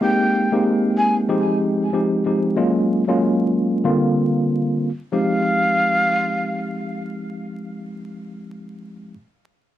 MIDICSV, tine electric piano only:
0, 0, Header, 1, 2, 480
1, 0, Start_track
1, 0, Key_signature, -4, "minor"
1, 0, Tempo, 638298
1, 14, Time_signature, 4, 2, 24, 8
1, 7353, End_track
2, 0, Start_track
2, 0, Title_t, "Tine electric piano"
2, 0, Program_c, 0, 4
2, 7, Note_on_c, 0, 56, 93
2, 8, Note_on_c, 0, 58, 84
2, 10, Note_on_c, 0, 60, 85
2, 13, Note_on_c, 0, 63, 84
2, 15, Note_on_c, 0, 67, 106
2, 360, Note_off_c, 0, 56, 0
2, 361, Note_off_c, 0, 58, 0
2, 362, Note_off_c, 0, 60, 0
2, 363, Note_off_c, 0, 63, 0
2, 364, Note_off_c, 0, 67, 0
2, 391, Note_on_c, 0, 56, 94
2, 394, Note_on_c, 0, 58, 88
2, 396, Note_on_c, 0, 60, 93
2, 397, Note_on_c, 0, 63, 84
2, 399, Note_on_c, 0, 67, 102
2, 959, Note_off_c, 0, 56, 0
2, 960, Note_off_c, 0, 60, 0
2, 962, Note_off_c, 0, 63, 0
2, 964, Note_off_c, 0, 67, 0
2, 966, Note_on_c, 0, 53, 92
2, 968, Note_on_c, 0, 56, 89
2, 969, Note_on_c, 0, 60, 85
2, 971, Note_on_c, 0, 63, 92
2, 972, Note_off_c, 0, 58, 0
2, 973, Note_on_c, 0, 67, 104
2, 1419, Note_off_c, 0, 53, 0
2, 1420, Note_off_c, 0, 56, 0
2, 1421, Note_off_c, 0, 60, 0
2, 1422, Note_off_c, 0, 63, 0
2, 1423, Note_off_c, 0, 67, 0
2, 1450, Note_on_c, 0, 53, 80
2, 1453, Note_on_c, 0, 56, 70
2, 1454, Note_on_c, 0, 60, 73
2, 1456, Note_on_c, 0, 63, 76
2, 1459, Note_on_c, 0, 67, 96
2, 1676, Note_off_c, 0, 53, 0
2, 1678, Note_off_c, 0, 56, 0
2, 1678, Note_off_c, 0, 60, 0
2, 1680, Note_off_c, 0, 63, 0
2, 1681, Note_off_c, 0, 67, 0
2, 1696, Note_on_c, 0, 53, 76
2, 1698, Note_on_c, 0, 56, 69
2, 1700, Note_on_c, 0, 60, 66
2, 1702, Note_on_c, 0, 63, 71
2, 1705, Note_on_c, 0, 67, 83
2, 1920, Note_off_c, 0, 53, 0
2, 1921, Note_off_c, 0, 56, 0
2, 1921, Note_off_c, 0, 60, 0
2, 1923, Note_off_c, 0, 63, 0
2, 1924, Note_off_c, 0, 67, 0
2, 1928, Note_on_c, 0, 54, 91
2, 1929, Note_on_c, 0, 56, 85
2, 1931, Note_on_c, 0, 58, 88
2, 1934, Note_on_c, 0, 61, 85
2, 1936, Note_on_c, 0, 65, 103
2, 2280, Note_off_c, 0, 54, 0
2, 2281, Note_off_c, 0, 56, 0
2, 2282, Note_off_c, 0, 58, 0
2, 2284, Note_off_c, 0, 61, 0
2, 2285, Note_off_c, 0, 65, 0
2, 2315, Note_on_c, 0, 54, 99
2, 2318, Note_on_c, 0, 56, 84
2, 2319, Note_on_c, 0, 58, 85
2, 2322, Note_on_c, 0, 61, 92
2, 2325, Note_on_c, 0, 65, 102
2, 2884, Note_off_c, 0, 58, 0
2, 2887, Note_off_c, 0, 65, 0
2, 2888, Note_on_c, 0, 50, 99
2, 2890, Note_on_c, 0, 55, 88
2, 2892, Note_off_c, 0, 54, 0
2, 2893, Note_on_c, 0, 58, 87
2, 2894, Note_off_c, 0, 56, 0
2, 2894, Note_on_c, 0, 60, 90
2, 2896, Note_off_c, 0, 61, 0
2, 2896, Note_on_c, 0, 65, 103
2, 3674, Note_off_c, 0, 50, 0
2, 3675, Note_off_c, 0, 55, 0
2, 3677, Note_off_c, 0, 58, 0
2, 3677, Note_off_c, 0, 60, 0
2, 3678, Note_off_c, 0, 65, 0
2, 3850, Note_on_c, 0, 53, 85
2, 3853, Note_on_c, 0, 56, 80
2, 3854, Note_on_c, 0, 60, 80
2, 3856, Note_on_c, 0, 63, 79
2, 3858, Note_on_c, 0, 67, 95
2, 6870, Note_off_c, 0, 53, 0
2, 6871, Note_off_c, 0, 56, 0
2, 6872, Note_off_c, 0, 60, 0
2, 6873, Note_off_c, 0, 63, 0
2, 6874, Note_off_c, 0, 67, 0
2, 7353, End_track
0, 0, End_of_file